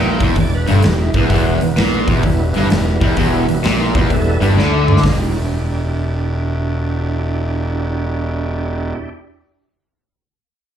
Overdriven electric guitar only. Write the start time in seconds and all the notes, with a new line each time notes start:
Already playing: A#2
0.22 E2
0.38 E2
0.68 G2
0.85 E2
1.16 E2
1.31 E2
1.62 E2
1.77 A#2
2.09 E2
2.26 E2
2.56 G2
2.72 E2
3.02 E2
3.18 E2
3.49 E2
3.64 A#2
3.96 E2
4.13 E2
4.41 G2
4.57 D3